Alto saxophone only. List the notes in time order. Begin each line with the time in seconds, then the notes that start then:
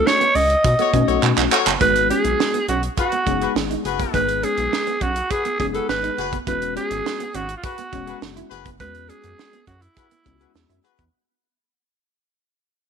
0.06 C#5
0.35 D#5
1.81 B4
2.10 G#4
2.68 F#4
2.98 F#4
4.14 B4
4.44 G#4
5.02 F#4
5.31 G#4
5.60 G#4
5.75 A4
5.89 B4
6.47 B4
6.77 G#4
7.35 F#4
7.57 F4
7.64 F#4
8.80 B4
9.09 G#4
9.67 F#4
9.82 E4